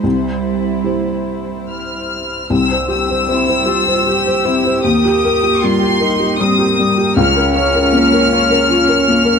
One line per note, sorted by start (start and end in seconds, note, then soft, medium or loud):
0.00 0.83 C2 soft
0.00 2.50 C5 soft
0.05 1.70 G3 medium
0.05 2.50 G3 soft
0.05 1.66 E4 medium
0.05 2.51 E4 soft
0.84 2.46 E4 soft
0.84 2.46 G4 soft
0.84 2.46 C5 soft
1.69 2.46 F6 medium
2.50 4.80 C2 medium
2.50 4.81 G3 medium
2.50 7.14 G4 medium
2.50 4.81 C5 medium
2.50 2.89 E6 loud
2.70 3.02 C5 medium
2.88 3.20 G4 medium
2.88 4.81 E6 loud
3.10 3.41 C5 medium
3.28 3.60 C4 medium
3.28 3.69 E4 medium
3.48 3.79 C5 medium
3.66 4.09 F4 medium
3.66 3.98 G4 medium
3.86 4.18 C5 medium
4.07 4.38 G4 medium
4.07 4.47 G4 medium
4.26 4.57 C5 medium
4.45 4.76 C4 medium
4.45 4.84 E4 medium
4.65 4.85 C5 medium
4.84 7.12 D#2 medium
4.84 7.17 A#3 medium
4.84 5.63 G4 medium
4.84 9.39 A#4 medium
4.84 5.61 D#6 loud
5.05 5.36 G4 medium
5.25 5.55 A#4 medium
5.43 5.74 G4 medium
5.62 5.94 G3 medium
5.62 6.03 F4 medium
5.62 6.39 C6 loud
5.82 6.13 G4 medium
6.00 6.42 D#4 medium
6.00 6.31 A#4 medium
6.20 6.51 G4 medium
6.39 6.71 G3 medium
6.39 6.79 C4 medium
6.39 7.16 D#6 loud
6.59 6.90 G4 medium
6.78 7.09 G3 medium
6.78 7.16 A#3 medium
6.98 7.17 G4 medium
7.17 9.39 C#2 medium
7.17 9.39 C#4 medium
7.17 9.39 F4 medium
7.17 7.53 F6 loud
7.36 7.67 A#4 medium
7.54 7.86 C#5 medium
7.54 9.39 F6 loud
7.75 8.05 A#4 medium
7.93 8.23 A#3 medium
8.13 8.43 A#4 medium
8.33 8.62 C#5 medium
8.51 8.81 A#4 medium
8.70 9.00 F4 medium
8.89 9.19 A#4 medium
9.08 9.38 A#3 medium
9.25 9.39 A#4 medium